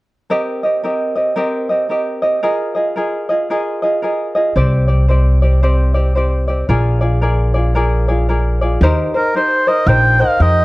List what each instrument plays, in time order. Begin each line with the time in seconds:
0.30 ukulele C4 G4 A#4 D#5
0.63 ukulele C4 G4 D#5
0.83 ukulele C4 G4 A#4 D#5
1.16 ukulele C4 G4 D#5
1.36 ukulele C4 G4 A#4 D#5
1.69 ukulele C4 G4 D#5
1.89 ukulele C4 G4 A#4 D#5
2.22 ukulele C4 G4 D#5
2.43 ukulele F4 G#4 A#4 D#5
2.75 ukulele F4 G#4 D#5
2.96 ukulele F4 G#4 A#4 D#5
3.29 ukulele F4 G#4 D#5
3.50 ukulele F4 G#4 A#4 D#5
3.82 ukulele F4 G#4 D#5
4.02 ukulele F4 G#4 A#4 D#5
4.35 ukulele F4 G#4 D#5
4.56 upright bass C2, ukulele C4 G4 C5 D5
4.88 ukulele C4 G4 D5
5.08 ukulele C4 G4 C5 D5
5.42 ukulele C4 G4 D5
5.63 ukulele C4 G4 C5 D5
5.94 ukulele C4 G4 D5
6.15 ukulele C4 G4 C5 D5
6.48 ukulele C4 G4 D5
6.69 upright bass A#1, ukulele F4 G#4 A#4 D5
7.01 ukulele F4 G#4 D5
7.22 ukulele F4 G#4 A#4 D5
7.54 ukulele F4 G#4 D5
7.75 ukulele F4 G#4 A#4 D5
8.08 ukulele F4 G#4 D5
8.29 ukulele F4 G#4 A#4 D5
8.61 ukulele F4 G#4 D5
8.81 upright bass D#2, ukulele D#4 G4 A#4 C5
9.14 ukulele D#4 A#4 C5, oboe A#4
9.35 ukulele D#4 G4 A#4 C5, oboe C5
9.67 ukulele D#4 A#4 C5, oboe D#5
9.87 upright bass A#1, ukulele D#4 G4 A#4 C5, oboe G5
10.19 ukulele D#4 A#4 C5, oboe F5
10.39 upright bass F2, ukulele D#4 G4 A#4 C5, oboe D#5